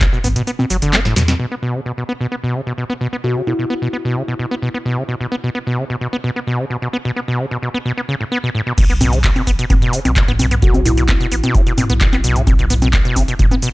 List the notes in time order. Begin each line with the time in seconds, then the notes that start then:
0.01 B2, kick, clap, closed hi-hat, shaker
0.13 B2, shaker
0.24 A1 B3, mid tom, open hi-hat, high conga, shaker
0.36 B2, closed hi-hat, shaker
0.47 B3, closed hi-hat, shaker
0.59 B2, high conga, shaker
0.70 F#1 F#3, open hi-hat, shaker
0.82 F#1 D3, closed hi-hat, shaker
0.93 B3, snare, clap, closed hi-hat, high conga, shaker
1.05 A2, snare, shaker
1.16 E2 B2, snare, open hi-hat, shaker
1.28 B2, snare, closed hi-hat, high conga, shaker
1.40 B2
1.52 B3
1.63 B2
1.75 C#3
1.86 B2
1.98 B2
2.09 B3
2.21 B2
2.32 B3
2.44 B2
2.55 C#3
2.67 B2
2.78 B2
2.90 B3
3.01 B2
3.13 B3
3.24 B2 F#4
3.36 C#3
3.47 B2 E4
3.59 B2
3.70 B3
3.82 B2
3.93 B3
4.05 B2
4.16 C#3
4.28 B2
4.39 B2
4.51 B3
4.62 B2
4.74 B3
4.86 B2
4.97 C#3
5.09 B2
5.21 B2
5.32 B3
5.44 B2
5.55 B3
5.67 B2
5.78 C#3
5.90 B2
6.01 B2
6.13 B3
6.24 B2
6.36 B3
6.47 B2
6.59 C#3
6.70 B2
6.82 B2
6.93 B3
7.05 B2
7.16 B3
7.28 B2
7.39 C#3
7.51 B2
7.62 B2
7.74 B3
7.86 B2
7.97 B3
8.09 C#3
8.21 A2
8.32 B3
8.44 B2
8.55 A2
8.67 B2
8.78 B1 B2, kick, closed hi-hat, crash, shaker
8.90 B3, closed hi-hat, shaker
9.01 B2, mid tom, open hi-hat, high conga, shaker
9.13 C#3, closed hi-hat, shaker
9.24 B2, kick, clap, closed hi-hat, shaker
9.36 B2, closed hi-hat, high conga, shaker
9.47 A1 B3, kick, open hi-hat, shaker
9.59 B2, closed hi-hat, shaker
9.70 B3, kick, closed hi-hat, mid tom, high conga, shaker
9.82 B2, closed hi-hat, shaker
9.93 C#3, open hi-hat, shaker
10.05 B1 B2, closed hi-hat, high conga, shaker
10.16 B2, kick, clap, closed hi-hat, shaker
10.28 A1 B3, closed hi-hat, mid tom, shaker
10.39 B1 B2, open hi-hat, high conga, shaker
10.51 B3, closed hi-hat, mid tom, shaker
10.62 B1 B2 F#4, kick, closed hi-hat, shaker
10.74 C#3, closed hi-hat, high conga, shaker
10.85 B2 E4, mid tom, open hi-hat, shaker
10.97 B2, closed hi-hat, shaker
11.09 B3, kick, clap, closed hi-hat, high conga, shaker
11.20 B2, closed hi-hat, shaker
11.32 A1 B3, open hi-hat, shaker
11.44 B2, closed hi-hat, high conga, shaker
11.55 C#3, kick, closed hi-hat, shaker
11.67 B2, closed hi-hat, shaker
11.78 B2, mid tom, open hi-hat, high conga, shaker
11.90 B1 B3, closed hi-hat, mid tom, shaker
12.01 B2, kick, clap, closed hi-hat, shaker
12.13 A1 B3, clap, closed hi-hat, high conga, shaker
12.24 B1 B2, open hi-hat, shaker
12.36 C#3, closed hi-hat, mid tom, shaker
12.47 B1 B2, kick, closed hi-hat, high conga, shaker
12.59 B2, closed hi-hat, shaker
12.70 B3, mid tom, open hi-hat, shaker
12.82 B2, closed hi-hat, high conga, shaker
12.93 B3, kick, clap, closed hi-hat, shaker
13.05 B2, closed hi-hat, shaker
13.16 A1 C#3, kick, open hi-hat, high conga, shaker
13.28 B2, closed hi-hat, shaker
13.39 B2, kick, closed hi-hat, mid tom, shaker
13.51 B3, closed hi-hat, high conga, shaker
13.62 B2, open hi-hat, shaker